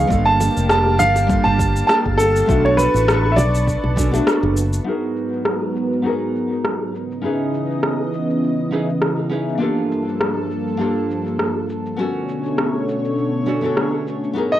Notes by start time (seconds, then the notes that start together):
Already playing: F5
0.07 G1 G3 A#3 D4 F4 A5, kick
0.11 A#3 G4 A4 F5, shaker
0.26 A5
0.40 high bongo, high conga, shaker
0.57 F1, shaker
0.69 A5, cross-stick, high bongo, shaker
0.99 G1 F5, high conga, low conga, shaker
1.16 high bongo, shaker
1.27 G3 A#3 D4 F4, kick, shaker
1.31 A4
1.44 G1 A5, high bongo, low conga
1.59 kick, shaker
1.76 shaker
1.87 A5, cross-stick, high bongo, shaker
2.06 G1, kick
2.18 A4, high bongo, shaker
2.36 shaker
2.46 B1 A3 B3 D4 F#4 B4 C#6, kick, shaker
2.50 A4
2.65 C#5, high bongo
2.77 B4, high conga, shaker
2.94 A1, high bongo, shaker
3.08 cross-stick, shaker
3.32 E5
3.36 B1 D5, high bongo, high conga, low conga, shaker
3.55 shaker
3.68 kick, high bongo, shaker
3.84 B1, low conga
3.96 B3 C#4 D4 F#4 A4, kick, shaker
4.11 A3 B3 D4 F#4, high bongo, shaker
4.16 A4
4.27 cross-stick, shaker
4.43 F#1, high bongo
4.57 shaker
4.73 shaker
4.84 G#2 F#3 B3 D#4 F#4 G#4 A#4
4.88 A#4
5.16 shaker
5.33 shaker
5.45 cross-stick, shaker
5.76 shaker
5.93 shaker
6.02 B3 D#4 F#4 G#4, shaker
6.06 A#4
6.36 shaker
6.52 shaker
6.64 cross-stick, shaker
6.94 C#3 E3 B3 D#5, shaker
7.11 shaker
7.21 C#4 D#4 E4 G#4 B4, shaker
7.54 shaker
7.71 shaker
7.83 cross-stick, shaker
8.13 shaker
8.30 shaker
8.44 shaker
8.71 C#4 D#4 E4 G#4 B4, shaker
8.89 shaker
9.02 cross-stick, shaker
9.30 C#4 D#4 E4 G#4 B4, shaker
9.49 shaker
9.58 G2 F3 A#3 D4 F4 G4 A4
9.62 A4, shaker
9.92 shaker
10.09 shaker
10.21 cross-stick, shaker
10.51 shaker
10.68 shaker
10.77 A#3 D4 F4 G4 A4, shaker
11.11 shaker
11.27 shaker
11.39 cross-stick, shaker
11.69 shaker
11.86 shaker
11.96 B2 D3 A3 B3 C#4 F#4 C#5, shaker
12.01 A4
12.29 shaker
12.45 shaker
12.58 cross-stick, shaker
12.89 shaker
13.05 shaker
13.18 shaker
13.46 B3 C#4 D4 F#4 A4, shaker
13.61 B3 C#4 D4 F#4, shaker
13.65 A4
13.77 cross-stick, shaker
14.07 shaker
14.24 shaker
14.33 G#2 F#3 B3 D#4 G#4
14.37 A#4 A#5, shaker
14.52 D#5